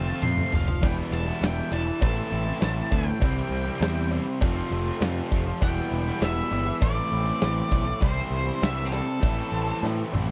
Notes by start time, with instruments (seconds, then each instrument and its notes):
Already playing: picked electric bass F1, overdriven electric guitar F3 A3, string machine C4 A4 F5, lead electric guitar A5
0.08 overdriven electric guitar A3 C4 F4
0.22 picked electric bass F2, overdriven electric guitar F3 A3 C4 F4, lead electric guitar C6, mid tom
0.37 mid tom
0.52 picked electric bass F1, overdriven electric guitar F3 A3 C4 F4, lead electric guitar F5, floor tom
0.68 muted overdriven electric guitar stroke, floor tom
0.81 picked electric bass E1, overdriven electric guitar E2 B2 E3 G3 B3, string machine B3 G4 E5, kick, splash, cowbell, crash
0.85 overdriven electric guitar E4, lead electric guitar G5
1.11 picked electric bass E1, lead electric guitar A5, crash
1.27 overdriven electric guitar G3 B3 E4
1.41 picked electric bass E1, overdriven electric guitar E3 G3 B3 E4, lead electric guitar G5, snare, cowbell, crash
1.71 picked electric bass E1, overdriven electric guitar B2 E3 G3 B3 E4, lead electric guitar A5, snare, cowbell, crash
1.76 overdriven electric guitar E2
1.87 muted overdriven electric guitar stroke
2.00 picked electric bass A1, overdriven electric guitar A2 E3 A3 C4 E4, string machine C4 A4 E5, lead electric guitar A5, kick, cowbell, crash
2.15 overdriven electric guitar A3 C4 E4
2.30 picked electric bass A1, overdriven electric guitar E3 A3 C4 E4, crash
2.45 overdriven electric guitar A3 C4 E4
2.60 picked electric bass A1, overdriven electric guitar A2 E3 A3 C4 E4, snare, cowbell, crash
2.90 picked electric bass D2, overdriven electric guitar A2 E3 A3 C4 E4, lead electric guitar G5, kick, cowbell, crash
3.07 muted overdriven electric guitar stroke
3.20 picked electric bass C2, overdriven electric guitar C3 E3 G3 C4 E4, string machine C4 G4 E5, kick, cowbell, crash
3.50 picked electric bass C2, crash
3.65 overdriven electric guitar G3 C4 E4
3.80 picked electric bass E2, overdriven electric guitar C3 E3 G3 C4 E4, snare, cowbell, crash
4.10 overdriven electric guitar C3 E3 G3 C4 E4, cowbell, crash
4.27 muted overdriven electric guitar stroke
4.40 picked electric bass F1, overdriven electric guitar F2 C3 F3 A3 C4 F4, string machine C4 A4 F5, kick, cowbell, crash
4.56 overdriven electric guitar A3 C4 F4
4.71 picked electric bass F1, overdriven electric guitar F3 A3 C4 F4, crash
4.87 overdriven electric guitar A3 C4 F4
5.01 picked electric bass F2, overdriven electric guitar F3 A3 C4 F4, snare, cowbell, crash
5.31 picked electric bass F1, overdriven electric guitar F2 C3 F3 A3 C4 F4, kick, cowbell, crash
5.47 muted overdriven electric guitar stroke
5.61 picked electric bass E1, overdriven electric guitar E2 B2 E3 G3 B3 E4, string machine B3 G4 E5, lead electric guitar G5, kick, cowbell, crash
5.92 picked electric bass E1, crash
6.07 overdriven electric guitar G3 B3 E4
6.21 picked electric bass E1, overdriven electric guitar E3 G3 B3 E4, lead electric guitar E5, snare, cowbell, crash
6.51 picked electric bass G1, overdriven electric guitar E2 B2 E3 G3 B3 E4, cowbell, crash
6.67 muted overdriven electric guitar stroke
6.81 picked electric bass A1, overdriven electric guitar A2 E3 A3 C4 E4, string machine C4 A4 E5, lead electric guitar D5, kick, cowbell, crash
6.95 overdriven electric guitar A3 C4 E4
7.11 picked electric bass A1, overdriven electric guitar E3 A3 C4 E4, crash
7.26 overdriven electric guitar A3 C4 E4
7.41 picked electric bass A1, overdriven electric guitar A2 E3 A3 C4 E4, snare, cowbell, crash
7.71 picked electric bass B1, overdriven electric guitar A2 E3 A3 C4 E4, kick, cowbell, crash
7.87 muted overdriven electric guitar stroke
8.01 picked electric bass C2, overdriven electric guitar C3 E3 G3 C4 E4, string machine C4 G4 E5, lead electric guitar C5, kick, cowbell, crash
8.31 picked electric bass C2, crash
8.47 overdriven electric guitar G3 C4 E4
8.61 picked electric bass C2, overdriven electric guitar C3 E3 G3 C4 E4, lead electric guitar E5, snare, cowbell, crash
8.85 lead electric guitar G4
8.92 overdriven electric guitar C3 E3 G3 C4 E4, lead electric guitar A4, cowbell, crash
9.07 muted overdriven electric guitar stroke
9.21 picked electric bass A1, overdriven electric guitar A2 E3 A3 C4 E4, string machine C4 A4 E5, kick, cowbell, crash
9.36 overdriven electric guitar A3 C4 E4
9.51 picked electric bass A1, overdriven electric guitar E3 A3 C4 E4, crash
9.67 overdriven electric guitar A3 C4 E4
9.82 overdriven electric guitar A2 E3 A3 C4 E4, picked electric bass A2, snare, cowbell
10.12 picked electric bass A1, overdriven electric guitar A2 E3 A3 C4 E4, mid tom, cowbell
10.28 muted overdriven electric guitar stroke